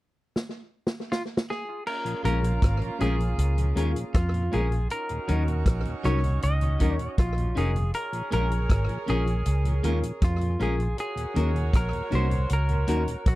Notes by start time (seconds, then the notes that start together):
0.36 snare
0.87 snare
1.12 F4, snare
1.37 snare
1.50 G#4
1.87 A#3 C#4 F4 A#4, crash
2.05 A#2 F3, closed hi-hat
2.23 A#1 G#3 A#3 C#4 F4 G#4 A#4, closed hi-hat
2.42 A#2 F3, closed hi-hat
2.62 G#1, kick, cross-stick, closed hi-hat
2.80 A#2 F3, muted clean electric guitar stroke, closed hi-hat
2.99 A#1 G#3 A#3 C#4 F4 G#4 A#4, closed hi-hat
3.19 A#2 F3, closed hi-hat
3.38 C#2, closed hi-hat
3.57 A#2 F3, closed hi-hat
3.75 D#2 G#3 A#3 C#4 F4 G#4 A#4, closed hi-hat
3.94 A#2 F3, closed hi-hat
4.14 F2 F4, kick, cross-stick, closed hi-hat
4.33 A#2 F3, closed hi-hat
4.51 A#1 G#3 A#3 C#4 F4 G#4 A#4, closed hi-hat
4.70 A#2 F3, closed hi-hat
4.90 C#4 D#4 F#4 A#4, closed hi-hat
5.09 D#2 A#2, closed hi-hat
5.27 D#2 F#3 C#4 D#4 F#4 A#4, closed hi-hat
5.48 D#2 A#2, closed hi-hat
5.66 A#1, kick, cross-stick, closed hi-hat
5.85 D#2 A#2, closed hi-hat
6.03 C2 F#3 C#4 D#4 F#4 A#4 C#5, cross-stick, closed hi-hat
6.23 D#2 A#2, closed hi-hat
6.42 C#2 D#5, closed hi-hat
6.60 D#2 A#2, closed hi-hat
6.79 D#2 F#3 C#4 D#4 F#4 A#4, kick, closed hi-hat
6.96 D#2 A#2 C#5, closed hi-hat
7.18 A#1 F4, kick, cross-stick, closed hi-hat
7.37 D#2 A#2, closed hi-hat
7.55 F1 F#3 C#4 D#4 F#4 G#4 A#4, closed hi-hat
7.74 D#2 A#2, closed hi-hat
7.94 G#4 A#4 C#5, closed hi-hat
8.12 A#2 F3, closed hi-hat
8.30 A#1 G#3 A#3 C#4 F4 G#4 A#4, closed hi-hat
8.50 A#2 F3, closed hi-hat
8.70 G#1, kick, cross-stick, closed hi-hat
8.88 A#2 F3, muted clean electric guitar stroke, closed hi-hat
9.06 A#1 G#3 A#3 C#4 F4 G#4 A#4, closed hi-hat
9.26 A#2 F3, closed hi-hat
9.46 C#2, closed hi-hat
9.64 A#2 F3, closed hi-hat
9.82 D#2 G#3 A#3 C#4 F4 G#4 A#4, closed hi-hat
10.02 A#2 F3, closed hi-hat
10.22 F2 F4, kick, cross-stick, closed hi-hat
10.41 A#2 F3, closed hi-hat
10.59 A#1 G#3 A#3 C#4 F4 G#4 A#4, closed hi-hat
10.78 A#2 F3, closed hi-hat
10.98 F#4 G#4 A#4 C#5, closed hi-hat
11.16 D#2 A#2, closed hi-hat
11.34 D#2 F#3 A#3 C#4 D#4 F#4 A#4, closed hi-hat
11.54 D#2 A#2, closed hi-hat
11.73 A#1 A#4, kick, cross-stick, closed hi-hat
11.92 D#2 A#2, closed hi-hat
12.10 C2 F#3 A#3 C#4 D#4 F#4 A#4, closed hi-hat
12.15 C5
12.30 D#2 A#2, closed hi-hat
12.50 C#2 A#4, closed hi-hat
12.69 D#2 A#2, closed hi-hat
12.87 D#2 F#3 A#3 C#4 D#4 F#4 A#4, closed hi-hat
13.07 D#2 A#2, closed hi-hat
13.26 A#1 F#4, kick, cross-stick, closed hi-hat